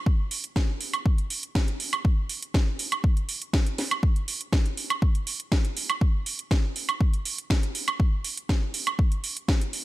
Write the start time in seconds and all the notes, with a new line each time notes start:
0.06 kick
0.31 open hi-hat
0.44 closed hi-hat
0.56 kick, snare
0.81 open hi-hat
0.94 closed hi-hat, high woodblock
1.06 kick
1.18 closed hi-hat
1.30 open hi-hat
1.43 closed hi-hat
1.55 kick, snare
1.68 closed hi-hat
1.80 open hi-hat
1.93 high woodblock
2.05 kick
2.29 open hi-hat
2.42 closed hi-hat
2.54 kick, snare
2.79 open hi-hat
2.92 closed hi-hat, high woodblock
3.04 kick
3.17 closed hi-hat
3.29 open hi-hat
3.42 closed hi-hat
3.53 kick, snare
3.66 closed hi-hat
3.78 snare, open hi-hat
3.91 closed hi-hat, high woodblock
4.03 kick
4.16 closed hi-hat
4.28 open hi-hat
4.41 closed hi-hat
4.53 kick, snare
4.66 closed hi-hat
4.77 open hi-hat
4.90 closed hi-hat, high woodblock
5.02 kick
5.15 closed hi-hat
5.27 open hi-hat
5.40 closed hi-hat
5.52 kick, snare
5.65 closed hi-hat
5.77 open hi-hat
5.90 closed hi-hat, high woodblock
6.01 kick
6.26 open hi-hat
6.39 closed hi-hat
6.51 kick, snare
6.76 open hi-hat
6.89 closed hi-hat, high woodblock
7.01 kick
7.14 closed hi-hat
7.25 open hi-hat
7.38 closed hi-hat
7.50 kick, snare
7.63 closed hi-hat
7.75 open hi-hat
7.88 closed hi-hat, high woodblock
8.00 kick
8.24 open hi-hat
8.37 closed hi-hat
8.49 kick, snare
8.74 open hi-hat
8.87 closed hi-hat, high woodblock
8.99 kick
9.12 closed hi-hat
9.24 open hi-hat
9.37 closed hi-hat
9.48 kick, snare
9.61 closed hi-hat
9.73 open hi-hat